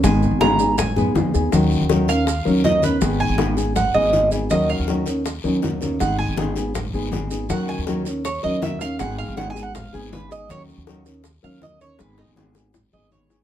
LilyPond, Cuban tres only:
\new Staff \with { instrumentName = "Cuban tres" } { \time 4/4 \key aes \dorian \tempo 4 = 160 aes''4 bes''4 aes''4 r4 | r4. f''4. ees''8 ces''8~ | ces''8 aes''4. ges''8 ees''4 r8 | ees''8 f''8 r2. |
ges''8 aes''8 r2. | ges''8 aes''8 r4 des''8 ees''8 fes''8 f''8 | ges''8 f''8 \tuplet 3/2 { ges''8 aes''8 ges''8 } f''8 aes'8 ces''8 ees''8 | des''8 r2 f''8 ees''8 des''8 |
ces''8 ees'8 r4. ees''8 des''8. r16 | }